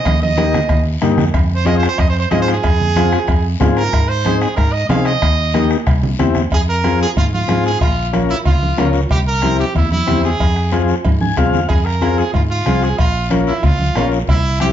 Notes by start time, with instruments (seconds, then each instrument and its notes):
Already playing: trumpet D#5
0.05 fingered electric bass D#2, bombo low, bombo rim, cowbell, high conga, long guiro
0.22 trumpet D#5, high conga
0.37 transistor combo organ A#3 D#4 G4, bombo rim, cowbell, high conga, short guiro
0.53 bombo rim, low conga, short guiro
0.69 fingered electric bass D#2, bombo low, bombo rim, cowbell, low conga, long guiro
1.02 fingered electric bass G2, transistor combo organ A#3 D#4 G4, bombo rim, cowbell, low conga, short guiro
1.18 fingered electric bass F2, bombo rim, low conga, short guiro
1.34 fingered electric bass F2, bombo low, bombo rim, cowbell, high conga, long guiro
1.56 trumpet C5
1.65 transistor combo organ C4 F4 G#4, trumpet D#5, bombo rim, cowbell, high conga, short guiro
1.78 trumpet C5
1.83 bombo rim, short guiro
1.88 trumpet C5
1.98 fingered electric bass F2, trumpet D#5, bombo low, bombo rim, cowbell, high conga, long guiro
2.10 trumpet C5
2.20 trumpet C5
2.31 fingered electric bass G#2, transistor combo organ C4 F4 G#4, trumpet D#5, bombo rim, cowbell, high conga, short guiro
2.42 trumpet C5
2.48 bombo rim, short guiro
2.52 trumpet G#4
2.63 fingered electric bass F2, bombo low, bombo rim, cowbell, high conga, long guiro
2.81 low conga
2.96 transistor combo organ C4 F4 G#4, bombo rim, cowbell, high conga, short guiro
3.11 bombo rim, short guiro
3.27 fingered electric bass F2, bombo low, bombo rim, cowbell, high conga, long guiro
3.60 fingered electric bass G#2, transistor combo organ C4 F4 G#4, bombo low, bombo rim, cowbell, high conga, low conga, low timbale, short guiro
3.76 trumpet A#4, bombo rim, short guiro
3.93 fingered electric bass G#2, bombo low, bombo rim, cowbell, long guiro
4.08 trumpet C5
4.25 transistor combo organ C4 D#4 G#4, bombo rim, cowbell, high conga, short guiro
4.41 trumpet G#4, bombo rim, short guiro
4.56 fingered electric bass G#2, trumpet A#4, bombo low, bombo rim, cowbell, high conga, long guiro
4.72 trumpet D#5
4.89 fingered electric bass C3, transistor combo organ C4 D#4 G#4, trumpet F5, bombo rim, cowbell, high conga, low timbale, short guiro
5.05 trumpet D#5, bombo rim, short guiro
5.21 fingered electric bass D#2, bombo low, bombo rim, cowbell, high conga, long guiro
5.54 transistor combo organ A#3 D#4 G4, bombo rim, cowbell, high conga, short guiro
5.70 bombo rim, short guiro
5.86 fingered electric bass C2, bombo low, bombo rim, cowbell, long guiro
6.03 low conga
6.18 fingered electric bass E2, transistor combo organ C4 E4 G4, bombo rim, cowbell, low conga, short guiro
6.35 bombo rim, low conga, short guiro
6.51 fingered electric bass F2, trumpet G#4, bombo low, cowbell, long guiro
6.69 trumpet A#4
6.84 transistor combo organ C4 F4 G#4, bombo rim, cowbell, high conga, short guiro
7.00 trumpet G#4, short guiro
7.16 fingered electric bass G#2, trumpet F4, bombo low, cowbell, low conga, long guiro
7.33 trumpet F4, high conga
7.48 fingered electric bass G#2, transistor combo organ C4 F4 G#4, bombo rim, cowbell, high conga, short guiro
7.65 trumpet G#4, short guiro
7.81 fingered electric bass A#1, trumpet F4, bombo low, cowbell, low conga, long guiro
8.13 transistor combo organ C#4 F4 A#4, bombo rim, cowbell, high conga, short guiro
8.29 trumpet E4, short guiro
8.45 fingered electric bass C#2, trumpet F4, bombo low, cowbell, low conga, long guiro
8.63 high conga
8.77 fingered electric bass C#2, transistor combo organ C#4 F4 A#4, bombo rim, cowbell, high conga, low conga, low timbale, short guiro
8.93 short guiro
9.09 fingered electric bass C2, trumpet G4, bombo low, cowbell, low conga, long guiro
9.27 trumpet A#4
9.42 transistor combo organ C4 E4 G4, bombo rim, cowbell, high conga, short guiro
9.59 trumpet G4, short guiro
9.75 fingered electric bass E2, trumpet E4, bombo low, cowbell, low conga, long guiro
9.92 trumpet E4, high conga
10.07 fingered electric bass E2, transistor combo organ C4 E4 G4, bombo rim, cowbell, high conga, low conga, short guiro
10.23 trumpet G#4, short guiro
10.40 fingered electric bass F2, bombo low, cowbell, long guiro
10.56 bombo rim
10.72 transistor combo organ C4 F4 G#4, bombo rim, cowbell, high conga, short guiro
10.88 short guiro
11.05 fingered electric bass G#2, bombo low, cowbell, high conga, long guiro
11.21 transistor combo organ G#5, high conga
11.37 fingered electric bass C2, transistor combo organ C4 F4 G#4 F5, bombo low, bombo rim, cowbell, low timbale, short guiro
11.53 fingered electric bass E2, low conga, short guiro
11.68 fingered electric bass F2, trumpet G#4, bombo low, cowbell, long guiro
11.85 trumpet A#4, bombo rim
12.01 transistor combo organ C4 F4 G#4, bombo rim, cowbell, high conga, short guiro
12.17 trumpet G#4, short guiro
12.33 fingered electric bass G#2, trumpet F4, bombo low, cowbell, low conga, long guiro
12.50 trumpet F4
12.66 fingered electric bass C2, transistor combo organ C4 F4 G#4, bombo rim, cowbell, high conga, short guiro
12.82 trumpet G#4, short guiro
12.98 fingered electric bass A#1, trumpet F4, bombo low, cowbell, long guiro
13.30 transistor combo organ C#4 F4 A#4, bombo rim, cowbell, high conga, short guiro
13.47 trumpet E4, short guiro
13.63 fingered electric bass C#2, trumpet F4, bombo low, cowbell, low conga, long guiro
13.79 high conga
13.95 fingered electric bass A#1, transistor combo organ C#4 F4 A#4, bombo rim, cowbell, high conga, low timbale, short guiro
14.12 short guiro
14.27 fingered electric bass C2, trumpet E4, bombo low, cowbell, low conga, long guiro
14.60 transistor combo organ C4 E4 G4, trumpet G4, bombo rim, cowbell, high conga, short guiro